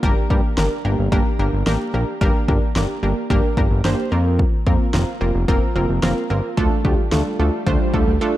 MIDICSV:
0, 0, Header, 1, 5, 480
1, 0, Start_track
1, 0, Key_signature, -2, "minor"
1, 0, Tempo, 545455
1, 27, Time_signature, 4, 2, 24, 8
1, 7368, End_track
2, 0, Start_track
2, 0, Title_t, "Synth pluck"
2, 0, Program_c, 0, 84
2, 26, Note_on_c, 0, 58, 105
2, 26, Note_on_c, 0, 62, 99
2, 26, Note_on_c, 0, 67, 98
2, 27, Note_on_c, 0, 70, 124
2, 157, Note_off_c, 0, 58, 0
2, 158, Note_off_c, 0, 62, 0
2, 158, Note_off_c, 0, 67, 0
2, 158, Note_off_c, 0, 70, 0
2, 269, Note_on_c, 0, 58, 83
2, 269, Note_on_c, 0, 62, 79
2, 269, Note_on_c, 0, 67, 77
2, 270, Note_on_c, 0, 70, 92
2, 399, Note_off_c, 0, 58, 0
2, 399, Note_off_c, 0, 62, 0
2, 399, Note_off_c, 0, 67, 0
2, 399, Note_off_c, 0, 70, 0
2, 507, Note_on_c, 0, 67, 77
2, 508, Note_on_c, 0, 58, 86
2, 508, Note_on_c, 0, 62, 78
2, 508, Note_on_c, 0, 70, 92
2, 638, Note_off_c, 0, 62, 0
2, 638, Note_off_c, 0, 67, 0
2, 638, Note_off_c, 0, 70, 0
2, 639, Note_off_c, 0, 58, 0
2, 747, Note_on_c, 0, 58, 86
2, 747, Note_on_c, 0, 62, 77
2, 747, Note_on_c, 0, 67, 78
2, 747, Note_on_c, 0, 70, 92
2, 878, Note_off_c, 0, 58, 0
2, 878, Note_off_c, 0, 62, 0
2, 878, Note_off_c, 0, 67, 0
2, 878, Note_off_c, 0, 70, 0
2, 985, Note_on_c, 0, 62, 99
2, 985, Note_on_c, 0, 70, 118
2, 986, Note_on_c, 0, 58, 106
2, 986, Note_on_c, 0, 67, 100
2, 1117, Note_off_c, 0, 58, 0
2, 1117, Note_off_c, 0, 62, 0
2, 1117, Note_off_c, 0, 67, 0
2, 1117, Note_off_c, 0, 70, 0
2, 1227, Note_on_c, 0, 58, 89
2, 1227, Note_on_c, 0, 67, 81
2, 1227, Note_on_c, 0, 70, 99
2, 1228, Note_on_c, 0, 62, 80
2, 1358, Note_off_c, 0, 58, 0
2, 1358, Note_off_c, 0, 62, 0
2, 1358, Note_off_c, 0, 67, 0
2, 1358, Note_off_c, 0, 70, 0
2, 1467, Note_on_c, 0, 58, 110
2, 1467, Note_on_c, 0, 62, 100
2, 1467, Note_on_c, 0, 67, 102
2, 1467, Note_on_c, 0, 70, 116
2, 1598, Note_off_c, 0, 58, 0
2, 1598, Note_off_c, 0, 62, 0
2, 1598, Note_off_c, 0, 67, 0
2, 1598, Note_off_c, 0, 70, 0
2, 1707, Note_on_c, 0, 58, 84
2, 1707, Note_on_c, 0, 62, 81
2, 1707, Note_on_c, 0, 67, 78
2, 1708, Note_on_c, 0, 70, 91
2, 1838, Note_off_c, 0, 58, 0
2, 1838, Note_off_c, 0, 62, 0
2, 1838, Note_off_c, 0, 67, 0
2, 1838, Note_off_c, 0, 70, 0
2, 1945, Note_on_c, 0, 70, 124
2, 1946, Note_on_c, 0, 58, 114
2, 1946, Note_on_c, 0, 62, 100
2, 1946, Note_on_c, 0, 67, 99
2, 2077, Note_off_c, 0, 58, 0
2, 2077, Note_off_c, 0, 62, 0
2, 2077, Note_off_c, 0, 67, 0
2, 2077, Note_off_c, 0, 70, 0
2, 2185, Note_on_c, 0, 58, 82
2, 2185, Note_on_c, 0, 62, 80
2, 2186, Note_on_c, 0, 67, 77
2, 2187, Note_on_c, 0, 70, 92
2, 2317, Note_off_c, 0, 58, 0
2, 2317, Note_off_c, 0, 62, 0
2, 2317, Note_off_c, 0, 67, 0
2, 2318, Note_off_c, 0, 70, 0
2, 2427, Note_on_c, 0, 58, 87
2, 2427, Note_on_c, 0, 62, 77
2, 2427, Note_on_c, 0, 67, 78
2, 2427, Note_on_c, 0, 70, 93
2, 2558, Note_off_c, 0, 58, 0
2, 2558, Note_off_c, 0, 62, 0
2, 2558, Note_off_c, 0, 67, 0
2, 2558, Note_off_c, 0, 70, 0
2, 2666, Note_on_c, 0, 62, 79
2, 2666, Note_on_c, 0, 67, 77
2, 2666, Note_on_c, 0, 70, 94
2, 2667, Note_on_c, 0, 58, 88
2, 2797, Note_off_c, 0, 62, 0
2, 2797, Note_off_c, 0, 67, 0
2, 2797, Note_off_c, 0, 70, 0
2, 2798, Note_off_c, 0, 58, 0
2, 2905, Note_on_c, 0, 58, 108
2, 2906, Note_on_c, 0, 62, 96
2, 2906, Note_on_c, 0, 67, 99
2, 2906, Note_on_c, 0, 70, 118
2, 3037, Note_off_c, 0, 58, 0
2, 3037, Note_off_c, 0, 62, 0
2, 3037, Note_off_c, 0, 67, 0
2, 3037, Note_off_c, 0, 70, 0
2, 3147, Note_on_c, 0, 58, 87
2, 3148, Note_on_c, 0, 62, 82
2, 3148, Note_on_c, 0, 67, 81
2, 3148, Note_on_c, 0, 70, 99
2, 3278, Note_off_c, 0, 58, 0
2, 3278, Note_off_c, 0, 62, 0
2, 3278, Note_off_c, 0, 67, 0
2, 3278, Note_off_c, 0, 70, 0
2, 3385, Note_on_c, 0, 72, 120
2, 3386, Note_on_c, 0, 58, 110
2, 3386, Note_on_c, 0, 62, 96
2, 3386, Note_on_c, 0, 67, 100
2, 3517, Note_off_c, 0, 58, 0
2, 3517, Note_off_c, 0, 72, 0
2, 3518, Note_off_c, 0, 62, 0
2, 3518, Note_off_c, 0, 67, 0
2, 3624, Note_on_c, 0, 58, 91
2, 3624, Note_on_c, 0, 65, 80
2, 3624, Note_on_c, 0, 70, 95
2, 3625, Note_on_c, 0, 60, 81
2, 4009, Note_off_c, 0, 58, 0
2, 4009, Note_off_c, 0, 65, 0
2, 4009, Note_off_c, 0, 70, 0
2, 4010, Note_off_c, 0, 60, 0
2, 4106, Note_on_c, 0, 58, 86
2, 4106, Note_on_c, 0, 60, 79
2, 4106, Note_on_c, 0, 65, 76
2, 4106, Note_on_c, 0, 70, 94
2, 4237, Note_off_c, 0, 70, 0
2, 4238, Note_off_c, 0, 58, 0
2, 4238, Note_off_c, 0, 60, 0
2, 4238, Note_off_c, 0, 65, 0
2, 4344, Note_on_c, 0, 60, 75
2, 4344, Note_on_c, 0, 65, 79
2, 4345, Note_on_c, 0, 58, 85
2, 4345, Note_on_c, 0, 70, 93
2, 4477, Note_off_c, 0, 58, 0
2, 4477, Note_off_c, 0, 60, 0
2, 4477, Note_off_c, 0, 65, 0
2, 4477, Note_off_c, 0, 70, 0
2, 4582, Note_on_c, 0, 65, 79
2, 4583, Note_on_c, 0, 58, 82
2, 4584, Note_on_c, 0, 60, 78
2, 4584, Note_on_c, 0, 70, 95
2, 4716, Note_off_c, 0, 58, 0
2, 4716, Note_off_c, 0, 60, 0
2, 4716, Note_off_c, 0, 65, 0
2, 4716, Note_off_c, 0, 70, 0
2, 4825, Note_on_c, 0, 58, 110
2, 4825, Note_on_c, 0, 60, 99
2, 4825, Note_on_c, 0, 65, 95
2, 4825, Note_on_c, 0, 70, 121
2, 4957, Note_off_c, 0, 58, 0
2, 4957, Note_off_c, 0, 60, 0
2, 4957, Note_off_c, 0, 65, 0
2, 4957, Note_off_c, 0, 70, 0
2, 5065, Note_on_c, 0, 65, 84
2, 5065, Note_on_c, 0, 70, 97
2, 5066, Note_on_c, 0, 58, 90
2, 5066, Note_on_c, 0, 60, 85
2, 5197, Note_off_c, 0, 58, 0
2, 5197, Note_off_c, 0, 60, 0
2, 5197, Note_off_c, 0, 65, 0
2, 5197, Note_off_c, 0, 70, 0
2, 5304, Note_on_c, 0, 70, 117
2, 5305, Note_on_c, 0, 58, 110
2, 5305, Note_on_c, 0, 60, 101
2, 5305, Note_on_c, 0, 65, 97
2, 5436, Note_off_c, 0, 70, 0
2, 5437, Note_off_c, 0, 58, 0
2, 5437, Note_off_c, 0, 60, 0
2, 5437, Note_off_c, 0, 65, 0
2, 5545, Note_on_c, 0, 60, 80
2, 5545, Note_on_c, 0, 65, 77
2, 5545, Note_on_c, 0, 70, 96
2, 5546, Note_on_c, 0, 58, 85
2, 5677, Note_off_c, 0, 58, 0
2, 5677, Note_off_c, 0, 60, 0
2, 5677, Note_off_c, 0, 65, 0
2, 5677, Note_off_c, 0, 70, 0
2, 5784, Note_on_c, 0, 57, 108
2, 5785, Note_on_c, 0, 62, 105
2, 5785, Note_on_c, 0, 65, 102
2, 5785, Note_on_c, 0, 69, 122
2, 5916, Note_off_c, 0, 57, 0
2, 5917, Note_off_c, 0, 62, 0
2, 5917, Note_off_c, 0, 65, 0
2, 5917, Note_off_c, 0, 69, 0
2, 6024, Note_on_c, 0, 65, 78
2, 6024, Note_on_c, 0, 67, 94
2, 6025, Note_on_c, 0, 57, 83
2, 6025, Note_on_c, 0, 62, 76
2, 6156, Note_off_c, 0, 65, 0
2, 6157, Note_off_c, 0, 57, 0
2, 6157, Note_off_c, 0, 62, 0
2, 6157, Note_off_c, 0, 67, 0
2, 6265, Note_on_c, 0, 57, 86
2, 6265, Note_on_c, 0, 69, 90
2, 6266, Note_on_c, 0, 62, 80
2, 6266, Note_on_c, 0, 65, 78
2, 6397, Note_off_c, 0, 57, 0
2, 6397, Note_off_c, 0, 62, 0
2, 6397, Note_off_c, 0, 69, 0
2, 6398, Note_off_c, 0, 65, 0
2, 6507, Note_on_c, 0, 65, 80
2, 6508, Note_on_c, 0, 57, 86
2, 6508, Note_on_c, 0, 62, 78
2, 6508, Note_on_c, 0, 69, 95
2, 6638, Note_off_c, 0, 57, 0
2, 6638, Note_off_c, 0, 62, 0
2, 6638, Note_off_c, 0, 65, 0
2, 6638, Note_off_c, 0, 69, 0
2, 6746, Note_on_c, 0, 62, 100
2, 6746, Note_on_c, 0, 65, 97
2, 6747, Note_on_c, 0, 57, 103
2, 6747, Note_on_c, 0, 72, 118
2, 6877, Note_off_c, 0, 62, 0
2, 6877, Note_off_c, 0, 65, 0
2, 6878, Note_off_c, 0, 57, 0
2, 6878, Note_off_c, 0, 72, 0
2, 6987, Note_on_c, 0, 57, 90
2, 6988, Note_on_c, 0, 62, 84
2, 6988, Note_on_c, 0, 65, 80
2, 6988, Note_on_c, 0, 69, 98
2, 7118, Note_off_c, 0, 57, 0
2, 7118, Note_off_c, 0, 62, 0
2, 7118, Note_off_c, 0, 65, 0
2, 7118, Note_off_c, 0, 69, 0
2, 7226, Note_on_c, 0, 57, 110
2, 7226, Note_on_c, 0, 62, 100
2, 7226, Note_on_c, 0, 65, 104
2, 7226, Note_on_c, 0, 69, 117
2, 7357, Note_off_c, 0, 57, 0
2, 7357, Note_off_c, 0, 62, 0
2, 7357, Note_off_c, 0, 69, 0
2, 7358, Note_off_c, 0, 65, 0
2, 7368, End_track
3, 0, Start_track
3, 0, Title_t, "Analog synth bass"
3, 0, Program_c, 1, 38
3, 27, Note_on_c, 1, 31, 106
3, 121, Note_off_c, 1, 31, 0
3, 267, Note_on_c, 1, 43, 95
3, 362, Note_off_c, 1, 43, 0
3, 506, Note_on_c, 1, 31, 98
3, 601, Note_off_c, 1, 31, 0
3, 747, Note_on_c, 1, 31, 93
3, 841, Note_off_c, 1, 31, 0
3, 867, Note_on_c, 1, 31, 92
3, 962, Note_off_c, 1, 31, 0
3, 986, Note_on_c, 1, 31, 102
3, 1081, Note_off_c, 1, 31, 0
3, 1225, Note_on_c, 1, 31, 95
3, 1321, Note_off_c, 1, 31, 0
3, 1345, Note_on_c, 1, 31, 95
3, 1440, Note_off_c, 1, 31, 0
3, 1465, Note_on_c, 1, 33, 92
3, 1560, Note_off_c, 1, 33, 0
3, 1705, Note_on_c, 1, 34, 93
3, 1800, Note_off_c, 1, 34, 0
3, 1948, Note_on_c, 1, 31, 101
3, 2042, Note_off_c, 1, 31, 0
3, 2187, Note_on_c, 1, 31, 91
3, 2281, Note_off_c, 1, 31, 0
3, 2426, Note_on_c, 1, 31, 102
3, 2521, Note_off_c, 1, 31, 0
3, 2665, Note_on_c, 1, 31, 97
3, 2760, Note_off_c, 1, 31, 0
3, 2905, Note_on_c, 1, 31, 106
3, 3001, Note_off_c, 1, 31, 0
3, 3144, Note_on_c, 1, 31, 101
3, 3239, Note_off_c, 1, 31, 0
3, 3265, Note_on_c, 1, 31, 96
3, 3360, Note_off_c, 1, 31, 0
3, 3385, Note_on_c, 1, 31, 105
3, 3480, Note_off_c, 1, 31, 0
3, 3624, Note_on_c, 1, 41, 99
3, 3909, Note_off_c, 1, 41, 0
3, 4106, Note_on_c, 1, 41, 93
3, 4201, Note_off_c, 1, 41, 0
3, 4345, Note_on_c, 1, 29, 102
3, 4440, Note_off_c, 1, 29, 0
3, 4584, Note_on_c, 1, 29, 91
3, 4679, Note_off_c, 1, 29, 0
3, 4704, Note_on_c, 1, 29, 97
3, 4800, Note_off_c, 1, 29, 0
3, 4825, Note_on_c, 1, 29, 106
3, 4920, Note_off_c, 1, 29, 0
3, 5066, Note_on_c, 1, 29, 96
3, 5161, Note_off_c, 1, 29, 0
3, 5186, Note_on_c, 1, 29, 91
3, 5281, Note_off_c, 1, 29, 0
3, 5306, Note_on_c, 1, 29, 102
3, 5401, Note_off_c, 1, 29, 0
3, 5547, Note_on_c, 1, 31, 99
3, 5642, Note_off_c, 1, 31, 0
3, 5787, Note_on_c, 1, 38, 105
3, 5881, Note_off_c, 1, 38, 0
3, 6026, Note_on_c, 1, 38, 96
3, 6121, Note_off_c, 1, 38, 0
3, 6266, Note_on_c, 1, 38, 100
3, 6361, Note_off_c, 1, 38, 0
3, 6506, Note_on_c, 1, 38, 96
3, 6601, Note_off_c, 1, 38, 0
3, 6746, Note_on_c, 1, 38, 101
3, 6841, Note_off_c, 1, 38, 0
3, 6984, Note_on_c, 1, 38, 102
3, 7080, Note_off_c, 1, 38, 0
3, 7108, Note_on_c, 1, 38, 93
3, 7202, Note_off_c, 1, 38, 0
3, 7368, End_track
4, 0, Start_track
4, 0, Title_t, "Swell"
4, 0, Program_c, 2, 103
4, 3864, Note_on_c, 2, 60, 79
4, 7226, Note_off_c, 2, 60, 0
4, 7368, End_track
5, 0, Start_track
5, 0, Title_t, "Drums"
5, 27, Note_on_c, 9, 36, 112
5, 115, Note_off_c, 9, 36, 0
5, 267, Note_on_c, 9, 36, 96
5, 355, Note_off_c, 9, 36, 0
5, 507, Note_on_c, 9, 38, 109
5, 595, Note_off_c, 9, 38, 0
5, 986, Note_on_c, 9, 36, 97
5, 1074, Note_off_c, 9, 36, 0
5, 1467, Note_on_c, 9, 38, 106
5, 1555, Note_off_c, 9, 38, 0
5, 1948, Note_on_c, 9, 36, 114
5, 2036, Note_off_c, 9, 36, 0
5, 2187, Note_on_c, 9, 36, 93
5, 2275, Note_off_c, 9, 36, 0
5, 2427, Note_on_c, 9, 38, 104
5, 2515, Note_off_c, 9, 38, 0
5, 2906, Note_on_c, 9, 36, 94
5, 2994, Note_off_c, 9, 36, 0
5, 3143, Note_on_c, 9, 36, 88
5, 3231, Note_off_c, 9, 36, 0
5, 3386, Note_on_c, 9, 38, 102
5, 3474, Note_off_c, 9, 38, 0
5, 3866, Note_on_c, 9, 36, 111
5, 3954, Note_off_c, 9, 36, 0
5, 4106, Note_on_c, 9, 36, 98
5, 4194, Note_off_c, 9, 36, 0
5, 4346, Note_on_c, 9, 38, 102
5, 4434, Note_off_c, 9, 38, 0
5, 4825, Note_on_c, 9, 36, 95
5, 4913, Note_off_c, 9, 36, 0
5, 5307, Note_on_c, 9, 38, 105
5, 5395, Note_off_c, 9, 38, 0
5, 5786, Note_on_c, 9, 36, 111
5, 5874, Note_off_c, 9, 36, 0
5, 6026, Note_on_c, 9, 36, 95
5, 6114, Note_off_c, 9, 36, 0
5, 6266, Note_on_c, 9, 38, 105
5, 6354, Note_off_c, 9, 38, 0
5, 6746, Note_on_c, 9, 36, 100
5, 6834, Note_off_c, 9, 36, 0
5, 6984, Note_on_c, 9, 36, 93
5, 7072, Note_off_c, 9, 36, 0
5, 7368, End_track
0, 0, End_of_file